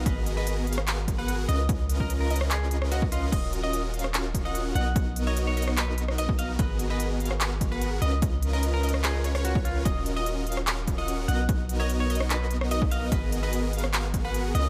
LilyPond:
<<
  \new Staff \with { instrumentName = "Synth pluck" } { \time 4/4 \key aes \dorian \tempo 4 = 147 ees''8. ees''8. f''4~ f''16 ges''8. ees''8~ | ees''8. ees''8. ees''8 ees''4 ees''8 ees''8 | ees''8. ees''8. f''4~ f''16 ges''8. dis''8~ | dis''8. dis''8. dis''8 dis''4 dis''8 dis''8 |
ees''8. ees''8. f''4~ f''16 ges''8. ees''8~ | ees''8. ees''8. ees''8 ees''8 des''16 des''8 des''8. | ees''8. ees''8. f''4~ f''16 ges''8. dis''8~ | dis''8. dis''8. dis''8 dis''4 dis''8 dis''8 |
ees''8. ees''8. f''4~ f''16 ges''8. ees''8 | }
  \new Staff \with { instrumentName = "Clean electric guitar" } { \time 4/4 \key aes \dorian ces''8 r16 ces''8 r4. ces''8 r16 ees''8 | r8. bes'16 r16 bes'8 r16 aes'8 r8 ges'16 r16 f'16 r16 | ees''8 r16 ees''8 r4. ees''8 r16 fis''8 | r8. des''16 r16 des''8 r16 b'8 r8 dis''16 r16 f''16 r16 |
ces''8 r16 ces''8 r4. ces''8 r16 ees''8 | r8. bes'16 r16 bes'8 r16 aes'8 r8 ges'16 r16 f'16 r16 | ees''8 r16 ees''8 r4. ees''8 r16 fis''8 | r8. des''16 r16 des''8 r16 b'8 r8 dis''16 r16 f''16 r16 |
ces''8 r16 ces''8 r4. ces''8 r16 ees''8 | }
  \new Staff \with { instrumentName = "Supersaw synth" } { \time 4/4 \key aes \dorian <ces' ges' aes' bes' ees''>8. <ces' ges' aes' bes' ees''>8. <ces' ges' aes' bes' f''>4~ <ces' ges' aes' bes' f''>16 <ces' ges' aes' bes' ges''>8. <des' f' bes' ces'' ees''>8~ | <des' f' bes' ces'' ees''>8. <des' f' bes' ces'' ees''>8. <des' f' bes' ces'' ees''>8 <des' f' bes' ces'' ees''>4 <des' f' bes' ces'' ees''>8 <des' f' bes' ces'' ees''>8 | <des' f' ges' bes' ees''>8. <des' f' ges' bes' ees''>8. <des' f' ges' bes' f''>4~ <des' f' ges' bes' f''>16 <des' f' ges' bes' ges''>8. <b dis' fis' ais' dis''>8~ | <b dis' fis' ais' dis''>8. <b dis' fis' ais' dis''>8. <b dis' fis' ais' dis''>8 <b dis' fis' ais' dis''>4 <b dis' fis' ais' dis''>8 <b dis' fis' ais' dis''>8 |
<ces' ges' aes' bes' ees''>8. <ces' ges' aes' bes' ees''>8. <ces' ges' aes' bes' f''>4~ <ces' ges' aes' bes' f''>16 <ces' ges' aes' bes' ges''>8. <des' f' bes' ces'' ees''>8~ | <des' f' bes' ces'' ees''>8. <des' f' bes' ces'' ees''>8. <des' f' bes' ces'' ees''>8 <des' f' bes' ces'' ees''>8 <des' f' bes' ces'' des''>16 <des' f' bes' ces'' des''>8 <des' f' bes' ces'' des''>8. | <des' f' ges' bes' ees''>8. <des' f' ges' bes' ees''>8. <des' f' ges' bes' f''>4~ <des' f' ges' bes' f''>16 <des' f' ges' bes' ges''>8. <b dis' fis' ais' dis''>8~ | <b dis' fis' ais' dis''>8. <b dis' fis' ais' dis''>8. <b dis' fis' ais' dis''>8 <b dis' fis' ais' dis''>4 <b dis' fis' ais' dis''>8 <b dis' fis' ais' dis''>8 |
<ces' ges' aes' bes' ees''>8. <ces' ges' aes' bes' ees''>8. <ces' ges' aes' bes' f''>4~ <ces' ges' aes' bes' f''>16 <ces' ges' aes' bes' ges''>8. <des' f' bes' ces'' ees''>8 | }
  \new Staff \with { instrumentName = "808-style bass" } { \clef bass \time 4/4 \key aes \dorian aes,,2.~ aes,,8 des,8~ | des,1 | ees,,2.~ ees,,8 b,,8~ | b,,1 |
aes,,2.~ aes,,8 des,8~ | des,1 | ees,,2.~ ees,,8 b,,8~ | b,,1 |
aes,,2.~ aes,,8 des,8 | }
  \new DrumStaff \with { instrumentName = "Drums" } \drummode { \time 4/4 <hh bd>8 hh8 hh8 hh32 hh32 ss16 <hc hh>8 <hh bd>8 hh8 hh8 | <hh bd>8 hh16 bd16 hh8 hh32 hh32 ss16 <hc hh>8 hh16 ss16 hh16 bd16 hh8 | <cymc hh bd>8 hh8 hh8 hh32 hh32 ss16 <hc hh>8 <hh bd>8 hh8 hh8 | <hh bd>8 hh8 hh8 hh32 hh32 ss16 <hc hh>8 hh16 ss16 hh16 bd16 hh8 |
<hh bd>8 hh8 hh8 hh32 hh32 ss16 <hc hh>8 <hh bd>8 hh8 hh8 | <hh bd>8 hh8 hh8 hh32 hh32 ss16 <hc hh>8 hh16 ss16 hh16 bd16 hh8 | <hh bd>8 hh8 hh8 hh32 hh32 ss16 <hc hh>8 <hh bd>8 hh8 hh8 | <hh bd>8 hh8 hh8 hh32 hh32 ss16 <hc hh>8 hh16 ss16 hh16 bd16 hh8 |
<hh bd>8 hh8 hh8 hh32 hh32 ss16 <hc hh>8 <hh bd>8 hh8 hh8 | }
>>